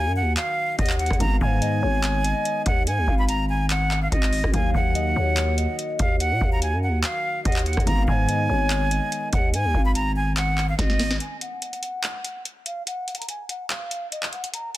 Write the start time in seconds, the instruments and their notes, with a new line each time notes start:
Already playing: grand piano D#3 F#3 A#3 D#4, flute G#5
0.06 808-style bass F#2
0.16 flute F#5
0.22 808-style bass D#2
0.37 flute F5, clap, closed hi-hat
0.78 808-style bass D#2, flute D#5, soft synth lead F#5, kick, closed hi-hat
0.86 closed hi-hat
0.90 clap, closed hi-hat
0.99 flute F#5, soft synth lead F#5, closed hi-hat, open hi-hat
1.06 closed hi-hat
1.10 808-style bass D#2, kick, cross-stick, closed hi-hat
1.18 808-style bass G#1, grand piano D#3 G#3 B3, soft synth lead F5, flute A#5, kick, closed hi-hat
1.23 grand piano D#4
1.41 808-style bass G#2, flute G#5, kick
1.62 soft synth lead D#5, closed hi-hat
1.82 808-style bass G#1, soft synth lead C#5
2.04 clap, closed hi-hat
2.24 soft synth lead D#5, closed hi-hat
2.45 closed hi-hat
2.66 808-style bass D#2, flute F#5, kick, closed hi-hat
2.87 808-style bass G#2, flute G#5, closed hi-hat
2.98 808-style bass D#2
3.08 808-style bass G#1, soft synth lead F5, kick
3.19 flute B5
3.28 flute A#5, closed hi-hat
3.49 flute G#5
3.70 flute F#5, clap, closed hi-hat
3.91 clap
4.02 flute F5
4.12 808-style bass G#1, flute D#5, kick, closed hi-hat
4.23 clap
4.33 open hi-hat
4.44 808-style bass G#1, kick, cross-stick
4.51 808-style bass D#2, grand piano D#3 F#3 A#3, soft synth lead F5, flute G#5, kick, closed hi-hat
4.56 grand piano D#4
4.74 808-style bass D#2, flute F#5, kick
4.95 soft synth lead D#5, closed hi-hat
5.16 808-style bass D#2, soft synth lead C#5
5.37 clap, closed hi-hat
5.58 soft synth lead D#5, closed hi-hat
5.79 closed hi-hat
5.99 808-style bass D#2, flute F5, kick, closed hi-hat
6.20 flute F#5, closed hi-hat
6.31 808-style bass A#2
6.41 808-style bass D#2, soft synth lead F5, kick
6.52 flute A#5
6.62 flute G#5, closed hi-hat
6.73 808-style bass F#2
6.83 flute F#5
6.88 808-style bass D#2
7.04 flute F5, clap, closed hi-hat
7.45 808-style bass D#2, flute D#5, soft synth lead F#5, kick, closed hi-hat
7.52 closed hi-hat
7.56 clap, closed hi-hat
7.65 flute F#5, soft synth lead F#5, closed hi-hat, open hi-hat
7.73 closed hi-hat
7.77 808-style bass D#2, kick, cross-stick, closed hi-hat
7.84 808-style bass G#1, grand piano D#3 G#3 B3, soft synth lead F5, flute A#5, kick, closed hi-hat
7.90 grand piano D#4
8.08 808-style bass G#2, flute G#5, kick
8.28 soft synth lead D#5, closed hi-hat
8.49 808-style bass G#1, soft synth lead C#5
8.70 clap, closed hi-hat
8.91 soft synth lead D#5, closed hi-hat
9.12 closed hi-hat
9.33 808-style bass D#2, flute F#5, kick, closed hi-hat
9.54 808-style bass G#2, flute G#5, closed hi-hat
9.65 808-style bass D#2
9.74 808-style bass G#1, soft synth lead F5, kick
9.85 flute B5
9.95 flute A#5, closed hi-hat
10.16 flute G#5
10.37 flute F#5, clap, closed hi-hat
10.58 clap
10.69 flute F5
10.78 808-style bass G#1, flute D#5, kick, snare, closed hi-hat
10.90 snare
10.99 snare, open hi-hat
11.11 snare
11.20 flute G#5, closed hi-hat
11.41 flute F#5, closed hi-hat
11.62 closed hi-hat
11.73 closed hi-hat
11.83 closed hi-hat
12.04 clap, closed hi-hat
12.25 closed hi-hat
12.45 closed hi-hat
12.66 flute F5, closed hi-hat
12.87 flute F#5, closed hi-hat
13.08 closed hi-hat
13.15 closed hi-hat
13.19 flute A#5, closed hi-hat
13.29 flute G#5, closed hi-hat
13.49 flute F#5, closed hi-hat
13.70 flute F5, clap, closed hi-hat
13.91 closed hi-hat
14.11 flute D#5, closed hi-hat
14.23 clap
14.32 flute F#5, closed hi-hat, open hi-hat
14.44 closed hi-hat
14.53 flute A#5, closed hi-hat